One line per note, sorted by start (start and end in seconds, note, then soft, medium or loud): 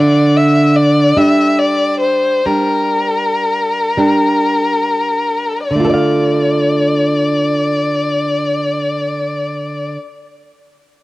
0.00 1.12 D3 medium
0.00 0.38 D5 medium
0.37 0.78 E5 medium
0.76 1.19 D5 medium
1.17 2.41 G3 soft
1.17 2.41 D4 soft
1.17 1.60 E5 medium
1.59 2.00 D5 medium
2.00 2.47 C5 soft
2.45 3.92 G3 soft
2.45 3.92 D4 soft
2.45 5.68 A#4 soft
3.97 5.67 G3 soft
3.97 5.67 D4 soft
5.68 9.96 D3 soft
5.68 9.94 D5 soft
5.76 10.01 A3 soft
5.80 10.05 F4 soft
5.85 5.89 A4 soft
5.90 5.93 D5 soft
5.94 10.19 F5 soft